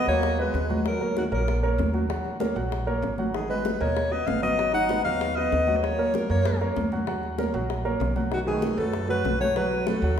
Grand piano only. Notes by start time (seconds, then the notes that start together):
0.08 F#3 F#4 F#5
0.38 B3 B4 D#5
0.69 F#3 F#4 F#5
1.00 A#3 A#4 C#5
1.32 A#3 A#4 C#5
1.63 A#3 A#4 C#5
1.93 F#3 F#4 F#5
2.09 F#3 F#4 F#5
2.40 A#3 A#4 C#5
2.56 F#3 F#4 F#5
2.87 A#3 A#4 C#5
3.18 F#3 F#4 F#5
3.49 B3 B4 D#5
3.81 B2 A#4 D#5
4.12 B3 B4 D#5
4.42 F#3 F#4 F#5
4.58 F#3 F#4 F#5
4.89 B3 B4 D#5
5.05 F#3 F#4 D#5
5.37 B3 B4 D#5
5.67 F#3 F#4 F#5
5.99 A#3 A#4 C#5
6.30 A#3 A#4 C#5
6.61 A#3 A#4 C#5
6.92 F#3 F#4 F#5
7.08 F#3 F#4 F#5
7.38 A#3 A#4 C#5
7.54 F#3 F#4 F#5
7.85 A#3 A#4 C#5
8.16 F#3 F#4 F#5
8.46 A3 F#4 B4
8.77 A3 A4 B4
9.08 A3 A4 B4
9.40 F#3 F#4 F#5
9.56 F#3 F#4 F#5
9.87 A3 A4 B4
10.03 F#3 F#4 F#5